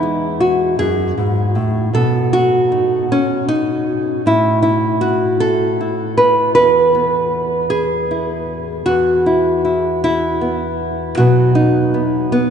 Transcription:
0, 0, Header, 1, 2, 480
1, 0, Start_track
1, 0, Key_signature, 4, "major"
1, 0, Tempo, 768246
1, 1218, Time_signature, 6, 3, 24, 8
1, 7811, End_track
2, 0, Start_track
2, 0, Title_t, "Nylon-string guitar"
2, 0, Program_c, 0, 24
2, 0, Note_on_c, 0, 40, 68
2, 0, Note_on_c, 0, 63, 86
2, 0, Note_on_c, 0, 64, 89
2, 18, Note_on_c, 0, 56, 46
2, 250, Note_off_c, 0, 64, 0
2, 253, Note_on_c, 0, 66, 73
2, 266, Note_off_c, 0, 63, 0
2, 491, Note_off_c, 0, 66, 0
2, 493, Note_on_c, 0, 68, 97
2, 494, Note_off_c, 0, 40, 0
2, 497, Note_on_c, 0, 42, 64
2, 732, Note_off_c, 0, 42, 0
2, 734, Note_on_c, 0, 44, 64
2, 969, Note_on_c, 0, 45, 66
2, 976, Note_off_c, 0, 44, 0
2, 1189, Note_off_c, 0, 56, 0
2, 1206, Note_off_c, 0, 45, 0
2, 1209, Note_on_c, 0, 47, 69
2, 1213, Note_off_c, 0, 68, 0
2, 1216, Note_on_c, 0, 69, 95
2, 1454, Note_off_c, 0, 69, 0
2, 1456, Note_on_c, 0, 66, 92
2, 1698, Note_on_c, 0, 63, 42
2, 1938, Note_off_c, 0, 63, 0
2, 1948, Note_on_c, 0, 61, 98
2, 2175, Note_off_c, 0, 61, 0
2, 2178, Note_on_c, 0, 63, 99
2, 2417, Note_off_c, 0, 66, 0
2, 2625, Note_off_c, 0, 47, 0
2, 2658, Note_off_c, 0, 63, 0
2, 2661, Note_on_c, 0, 45, 60
2, 2667, Note_on_c, 0, 64, 89
2, 2882, Note_off_c, 0, 64, 0
2, 2889, Note_on_c, 0, 64, 80
2, 3130, Note_on_c, 0, 66, 86
2, 3374, Note_off_c, 0, 64, 0
2, 3376, Note_on_c, 0, 69, 98
2, 3614, Note_off_c, 0, 66, 0
2, 3627, Note_on_c, 0, 64, 45
2, 3855, Note_off_c, 0, 69, 0
2, 3858, Note_on_c, 0, 71, 84
2, 4084, Note_off_c, 0, 71, 0
2, 4091, Note_on_c, 0, 71, 100
2, 4095, Note_on_c, 0, 40, 65
2, 4100, Note_off_c, 0, 45, 0
2, 4338, Note_off_c, 0, 64, 0
2, 4340, Note_on_c, 0, 59, 48
2, 4808, Note_off_c, 0, 59, 0
2, 4810, Note_on_c, 0, 68, 101
2, 5055, Note_off_c, 0, 71, 0
2, 5066, Note_on_c, 0, 64, 47
2, 5531, Note_off_c, 0, 40, 0
2, 5531, Note_off_c, 0, 68, 0
2, 5534, Note_on_c, 0, 66, 99
2, 5538, Note_on_c, 0, 40, 64
2, 5780, Note_off_c, 0, 64, 0
2, 5787, Note_on_c, 0, 64, 49
2, 6020, Note_off_c, 0, 64, 0
2, 6027, Note_on_c, 0, 64, 50
2, 6264, Note_off_c, 0, 64, 0
2, 6272, Note_on_c, 0, 64, 93
2, 6498, Note_off_c, 0, 66, 0
2, 6506, Note_on_c, 0, 59, 46
2, 6979, Note_off_c, 0, 59, 0
2, 6980, Note_off_c, 0, 40, 0
2, 6982, Note_on_c, 0, 66, 85
2, 6984, Note_on_c, 0, 47, 74
2, 6987, Note_off_c, 0, 64, 0
2, 6988, Note_on_c, 0, 54, 48
2, 6995, Note_on_c, 0, 59, 50
2, 7215, Note_off_c, 0, 66, 0
2, 7217, Note_on_c, 0, 63, 85
2, 7453, Note_off_c, 0, 59, 0
2, 7461, Note_on_c, 0, 59, 44
2, 7691, Note_off_c, 0, 59, 0
2, 7696, Note_off_c, 0, 63, 0
2, 7699, Note_on_c, 0, 59, 88
2, 7811, Note_off_c, 0, 47, 0
2, 7811, Note_off_c, 0, 54, 0
2, 7811, Note_off_c, 0, 59, 0
2, 7811, End_track
0, 0, End_of_file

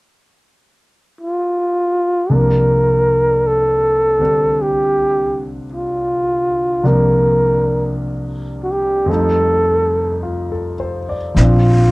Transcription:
0, 0, Header, 1, 5, 480
1, 0, Start_track
1, 0, Tempo, 1132075
1, 979, Time_signature, 4, 2, 24, 8
1, 5051, End_track
2, 0, Start_track
2, 0, Title_t, "Flugelhorn"
2, 0, Program_c, 0, 56
2, 513, Note_on_c, 0, 65, 66
2, 991, Note_on_c, 0, 70, 76
2, 997, Note_off_c, 0, 65, 0
2, 1472, Note_on_c, 0, 69, 75
2, 1478, Note_off_c, 0, 70, 0
2, 1958, Note_on_c, 0, 67, 67
2, 1965, Note_off_c, 0, 69, 0
2, 2349, Note_off_c, 0, 67, 0
2, 2431, Note_on_c, 0, 65, 59
2, 2912, Note_on_c, 0, 70, 69
2, 2919, Note_off_c, 0, 65, 0
2, 3382, Note_off_c, 0, 70, 0
2, 3661, Note_on_c, 0, 66, 50
2, 3694, Note_on_c, 0, 67, 60
2, 3700, Note_off_c, 0, 66, 0
2, 3857, Note_on_c, 0, 69, 74
2, 3864, Note_off_c, 0, 67, 0
2, 4336, Note_off_c, 0, 69, 0
2, 4823, Note_on_c, 0, 65, 81
2, 5051, Note_off_c, 0, 65, 0
2, 5051, End_track
3, 0, Start_track
3, 0, Title_t, "Grand piano"
3, 0, Program_c, 1, 0
3, 973, Note_on_c, 1, 48, 30
3, 974, Note_on_c, 1, 36, 34
3, 976, Note_on_c, 1, 58, 30
3, 977, Note_on_c, 1, 53, 30
3, 981, Note_on_c, 1, 62, 37
3, 1054, Control_c, 1, 64, 127
3, 1774, Note_on_c, 1, 50, 32
3, 1780, Note_on_c, 1, 55, 30
3, 1781, Note_off_c, 1, 62, 0
3, 1781, Note_on_c, 1, 60, 29
3, 1787, Note_on_c, 1, 62, 35
3, 2892, Note_off_c, 1, 36, 0
3, 2892, Note_off_c, 1, 48, 0
3, 2894, Note_off_c, 1, 50, 0
3, 2894, Note_off_c, 1, 53, 0
3, 2894, Note_off_c, 1, 58, 0
3, 2896, Note_off_c, 1, 55, 0
3, 2897, Note_off_c, 1, 60, 0
3, 2897, Note_off_c, 1, 62, 0
3, 2899, Note_on_c, 1, 36, 37
3, 2899, Note_on_c, 1, 48, 31
3, 2902, Note_on_c, 1, 53, 33
3, 2903, Note_on_c, 1, 62, 40
3, 2904, Note_on_c, 1, 58, 33
3, 3840, Note_on_c, 1, 41, 41
3, 3844, Note_off_c, 1, 53, 0
3, 3850, Note_on_c, 1, 53, 35
3, 3852, Note_on_c, 1, 55, 34
3, 3855, Note_off_c, 1, 36, 0
3, 3855, Note_off_c, 1, 48, 0
3, 3857, Note_off_c, 1, 62, 0
3, 3858, Note_off_c, 1, 58, 0
3, 3858, Note_on_c, 1, 57, 39
3, 3859, Control_c, 1, 64, 0
3, 3863, Note_on_c, 1, 63, 45
3, 3930, Control_c, 1, 64, 127
3, 4337, Note_on_c, 1, 65, 33
3, 4460, Note_on_c, 1, 69, 35
3, 4557, Note_off_c, 1, 65, 0
3, 4578, Note_on_c, 1, 72, 35
3, 4661, Note_off_c, 1, 69, 0
3, 4703, Note_on_c, 1, 74, 36
3, 4726, Note_off_c, 1, 72, 0
3, 4803, Note_off_c, 1, 53, 0
3, 4808, Note_off_c, 1, 41, 0
3, 4810, Note_on_c, 1, 53, 39
3, 4814, Note_off_c, 1, 55, 0
3, 4817, Note_off_c, 1, 57, 0
3, 4820, Note_off_c, 1, 63, 0
3, 4820, Control_c, 1, 64, 0
3, 4823, Note_on_c, 1, 60, 41
3, 4831, Note_on_c, 1, 62, 48
3, 4867, Note_off_c, 1, 74, 0
3, 4904, Control_c, 1, 64, 127
3, 5051, Note_off_c, 1, 53, 0
3, 5051, Note_off_c, 1, 60, 0
3, 5051, Note_off_c, 1, 62, 0
3, 5051, End_track
4, 0, Start_track
4, 0, Title_t, "Upright bass"
4, 0, Program_c, 2, 32
4, 4818, Note_on_c, 2, 34, 69
4, 5051, Note_off_c, 2, 34, 0
4, 5051, End_track
5, 0, Start_track
5, 0, Title_t, "Drums"
5, 4819, Note_on_c, 9, 25, 34
5, 4819, Note_on_c, 9, 38, 22
5, 4861, Note_off_c, 9, 38, 0
5, 5051, Note_off_c, 9, 25, 0
5, 5051, End_track
0, 0, End_of_file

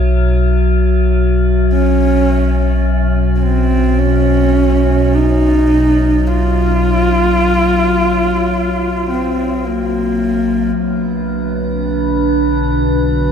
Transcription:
0, 0, Header, 1, 5, 480
1, 0, Start_track
1, 0, Tempo, 500000
1, 12786, End_track
2, 0, Start_track
2, 0, Title_t, "Analog synth pad"
2, 0, Program_c, 0, 89
2, 10342, Note_on_c, 0, 62, 67
2, 11960, Note_on_c, 0, 71, 77
2, 12071, Note_on_c, 0, 66, 72
2, 12786, Note_off_c, 0, 62, 0
2, 12786, Note_off_c, 0, 66, 0
2, 12786, Note_off_c, 0, 71, 0
2, 12786, End_track
3, 0, Start_track
3, 0, Title_t, "Synth drone"
3, 0, Program_c, 1, 95
3, 0, Note_on_c, 1, 54, 80
3, 10347, Note_on_c, 1, 71, 71
3, 10349, Note_off_c, 1, 54, 0
3, 12786, Note_off_c, 1, 71, 0
3, 12786, End_track
4, 0, Start_track
4, 0, Title_t, "Horsehead fiddle"
4, 0, Program_c, 2, 110
4, 1662, Note_on_c, 2, 61, 99
4, 2700, Note_off_c, 2, 61, 0
4, 3226, Note_on_c, 2, 61, 52
4, 3290, Note_on_c, 2, 60, 79
4, 3305, Note_off_c, 2, 61, 0
4, 3824, Note_on_c, 2, 61, 93
4, 3839, Note_off_c, 2, 60, 0
4, 4934, Note_on_c, 2, 63, 96
4, 4948, Note_off_c, 2, 61, 0
4, 6018, Note_on_c, 2, 65, 95
4, 6033, Note_off_c, 2, 63, 0
4, 8720, Note_off_c, 2, 65, 0
4, 8738, Note_on_c, 2, 60, 74
4, 9266, Note_on_c, 2, 58, 81
4, 9281, Note_off_c, 2, 60, 0
4, 10336, Note_on_c, 2, 59, 77
4, 10350, Note_off_c, 2, 58, 0
4, 11164, Note_on_c, 2, 60, 78
4, 11179, Note_off_c, 2, 59, 0
4, 11425, Note_on_c, 2, 62, 85
4, 11440, Note_off_c, 2, 60, 0
4, 12497, Note_off_c, 2, 62, 0
4, 12503, Note_on_c, 2, 62, 90
4, 12786, Note_off_c, 2, 62, 0
4, 12786, End_track
5, 0, Start_track
5, 0, Title_t, "Synth drone"
5, 0, Program_c, 3, 95
5, 0, Note_on_c, 3, 35, 65
5, 10337, Note_off_c, 3, 35, 0
5, 10349, Note_on_c, 3, 35, 59
5, 10350, Note_on_c, 3, 50, 60
5, 12786, Note_off_c, 3, 35, 0
5, 12786, Note_off_c, 3, 50, 0
5, 12786, End_track
0, 0, End_of_file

